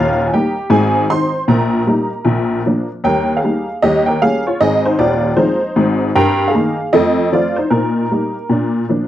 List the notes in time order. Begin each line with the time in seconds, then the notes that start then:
Already playing: D#1 D#2 F4 F5
0.27 G#5
0.33 G3 A#3 D#4 G4 G5
0.70 G#1 G#2 G#4 G#5
1.10 D#3 C4 D#4 C5 C6
1.48 A#1 A#2 A#4 A#5
1.87 G3 A#3 D#4
2.25 A#1 A#2
2.66 F3 A#3 D4
3.04 D#2 G3 A#4 G5
3.37 G#4 F5
3.44 G3 A#3 D#4
3.82 D#2 G3 G4 D#5
4.06 A#4 G5
4.22 G3 A#3 C#4 G#4 F5
4.47 F4 C#5
4.61 G#1 G#2 G#4 D#5
4.85 D#4 C5
4.98 D#1 D#2 F4 D5
5.36 F3 G#3 C4 D#4 C5
5.76 G#1 G#2
6.16 G2 A#4 G5
6.48 G#4 F5
6.55 D#3 A#3 D#4
6.93 F2 A3 A4 D#5
7.32 F3 A3 C4 F4 D5
7.56 D#4 C5
7.70 A#2 D#4 A#4
8.12 G3 A#3 D#4
8.49 A#2 D4
8.89 F3 A#3 D4